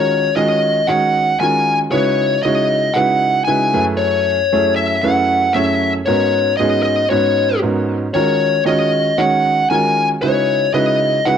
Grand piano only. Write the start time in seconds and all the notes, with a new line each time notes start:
Already playing: D#3 G#3 C#4 F4 F#4 A#4
0.36 D#3 G#3 C#4 F4 F#4 G#4
0.88 D#3 G#3 C#4 D#4 F#4 C#5
1.40 D#3 G#3 C#4 F4 F#4 A#4
1.92 C#3 G#3 D#4 E4 F#4 B4
2.45 C#3 G#3 D#4 E4 F#4 C#5
2.95 C#3 G#3 D#4 E4 F#4 B4
3.47 C#3 G#3 D#4 E4 F#4 B4
3.74 F#2 A3 C#4 E4 G#4 B4
4.52 F#2 A3 C#4 E4 G#4 C#5
5.03 F#2 A3 C#4 E4 G#4 B4
5.55 F#2 A3 C#4 E4 G#4 C#5
6.07 G#2 B3 C#4 D#4 F#4 A#4
6.59 G#2 B3 C#4 D#4 F#4 G#4
7.11 G#2 B3 C#4 D#4 F#4 B4
7.62 G#2 B3 C#4 D#4 F#4 A#4
8.15 D#3 G#3 C#4 F4 F#4 A#4
8.65 D#3 G#3 C#4 F4 F#4 C#5
9.18 D#3 G#3 C#4 D#4 F#4 C#5
9.71 D#3 G#3 C#4 F4 F#4 A#4
10.22 C#3 G#3 D#4 E4 F#4 B4
10.74 C#3 G#3 D#4 E4 F#4 B4
11.26 C#3 G#3 D#4 E4 F#4 B4